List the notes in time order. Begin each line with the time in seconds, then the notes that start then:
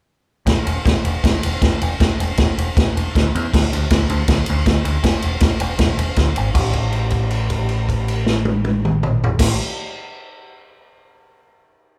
0.46 E1, kick, snare, ride
0.65 E1, ride
0.85 E1, kick, snare, ride
1.04 E1, ride
1.24 E1, kick, snare, ride
1.43 E1, ride
1.62 E1, kick, snare, ride
1.81 E1, ride
2.00 E1, kick, snare, ride
2.20 E1, ride
2.37 E1, kick, snare, ride
2.58 E1, ride
2.77 E1, kick, snare, ride
2.95 E1, ride
3.15 D2, kick, snare, ride
3.35 E2, ride
3.54 D2, kick, snare, crash
3.73 D2, ride
3.90 D2, kick, snare, ride
4.09 D2, ride
4.28 D2, kick, snare, ride
4.46 D2, ride
4.66 D2, kick, snare, ride
4.85 D2, ride
5.03 E1, kick, snare, ride
5.22 E1, ride
5.40 E1, kick, snare, ride
5.60 E1, ride
5.78 E1, kick, snare, ride
5.97 E1, ride
6.16 D2, kick, snare, ride
6.36 G#1, ride
6.54 A1, kick, crash
6.73 kick, crash
6.92 crash
7.10 kick, crash
7.31 crash
7.50 kick, crash
7.69 crash
7.89 kick, crash
8.08 crash
8.27 snare
8.45 high tom
8.65 high tom
8.85 mid tom
9.03 mid tom
9.24 floor tom
9.39 A1, kick, snare, crash